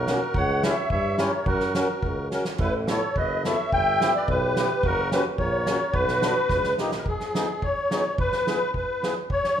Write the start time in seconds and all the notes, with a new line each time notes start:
Already playing: B1 F#4 A#4
0.07 A#3 C#4 F#4, snare, hi-hat pedal
0.34 C#2 C#5 F#5, kick
0.63 C#4 E4 G4 C#5 E5, snare, hi-hat pedal
0.90 G2 C#5 E5, kick
1.18 C#4 E4 G4 A#4 C#5, snare, hi-hat pedal
1.46 F#2 F#4 A#4, kick
1.60 snare
1.74 C#4 F#4 A#4, snare, hi-hat pedal
2.03 C#2, kick
2.31 C#4 F#4 A#4, snare, hi-hat pedal
2.45 snare
2.58 A1 E4 B4, kick, crash
2.87 B3 E4 A4 C#5, snare, hi-hat pedal
3.16 F#1 B4 D#5, kick
3.43 B3 E4 A4 C#5 E5, snare, hi-hat pedal
3.72 G1 E5 G5, kick
4.00 B3 E4 G4, snare, hi-hat pedal
4.16 B4 D5
4.28 B1 G4 B4, kick
4.56 B3 E4 G4, snare, hi-hat pedal
4.83 F#1 F#4 A#4, kick
5.11 A#3 C#4 F#4 G4 B4, snare, hi-hat pedal
5.38 A#1 A#4 C#5, kick
5.66 A#3 C#4 F#4, snare, hi-hat pedal
5.93 B1 F#4 B4, kick
6.08 snare
6.22 B3 D4 F#4, snare, hi-hat pedal
6.49 C#2, kick, snare
6.64 snare
6.77 A#1 A#3 D#4 G4, snare, hi-hat pedal
6.91 snare
6.98 A#4
7.06 G#4, kick
7.20 snare
7.34 B3 D#4 G#4, snare
7.62 C#5, kick
7.91 B3 D#4 G#4, snare
8.18 B4, kick
8.32 snare
8.46 B3 E4 G#4, snare
8.74 B4, kick
9.02 B3 E4 G#4, snare
9.30 C#5, kick
9.44 snare